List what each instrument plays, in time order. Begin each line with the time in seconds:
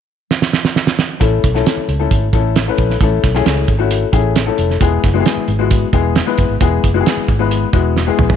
0.31 snare
0.42 snare
0.53 snare
0.65 snare
0.76 snare
0.87 snare
0.99 snare
1.20 fingered electric bass A1, upright piano A3 C#4 E4 A4, kick, closed hi-hat
1.44 fingered electric bass B1, kick, closed hi-hat
1.54 upright piano A3 C#4 E4 A4, snare
1.66 snare, closed hi-hat
1.77 muted fingered electric bass stroke
1.88 fingered electric bass C#2, closed hi-hat
1.99 upright piano A3 C#4 E4 A4
2.11 fingered electric bass G#1, kick, closed hi-hat
2.33 fingered electric bass A1, upright piano A3 C#4 E4 A4, kick, closed hi-hat
2.56 snare, closed hi-hat
2.68 upright piano A3 C#4 E4 B4
2.78 fingered electric bass A#1, kick, closed hi-hat
2.90 snare
3.01 fingered electric bass A1, upright piano A3 C#4 E4 A4, kick, closed hi-hat
3.23 fingered electric bass B1, kick, snare, closed hi-hat
3.34 upright piano A3 C#4 E4 G#4, snare
3.46 fingered electric bass C#2, snare, closed hi-hat
3.68 fingered electric bass G#1, kick, closed hi-hat
3.78 upright piano A3 C#4 E4 F#4
3.91 closed hi-hat
4.12 fingered electric bass A1, upright piano A3 C#4 E4 G#4, kick, closed hi-hat
4.36 snare, closed hi-hat
4.46 upright piano A3 C#4 E4 A4
4.58 fingered electric bass F1, closed hi-hat
4.71 snare
4.80 fingered electric bass E1, upright piano G#3 B3 E4 G#4, kick, closed hi-hat
5.03 fingered electric bass F#1, kick, snare, closed hi-hat
5.14 upright piano G#3 B3 E4 F#4
5.20 upright piano G#4
5.26 snare, closed hi-hat
5.37 muted fingered electric bass stroke
5.48 fingered electric bass G#1, closed hi-hat
5.59 upright piano G#3 B3 E4 F#4
5.71 kick, closed hi-hat
5.93 fingered electric bass E1, upright piano G#3 B3 E4 G#4, kick, closed hi-hat
6.15 snare, closed hi-hat
6.26 upright piano G#3 B3 E4 B4
6.38 fingered electric bass F#1, kick, closed hi-hat
6.49 fingered electric bass G#1
6.61 fingered electric bass E1, upright piano G#3 B3 E4 G#4, kick, closed hi-hat
6.84 fingered electric bass F#1, kick, closed hi-hat
6.94 upright piano G#3 B3 E4 F#4
7.01 upright piano G#4
7.06 snare, closed hi-hat
7.17 muted fingered electric bass stroke
7.28 fingered electric bass G#1, kick, closed hi-hat
7.39 upright piano G#3 B3 E4 B4
7.51 closed hi-hat
7.73 fingered electric bass E1, upright piano G#3 B3 E4 F#4, kick, closed hi-hat
7.96 snare
8.07 upright piano G#3 B3 E4 G#4
8.18 fingered electric bass A#1, mid tom
8.30 floor tom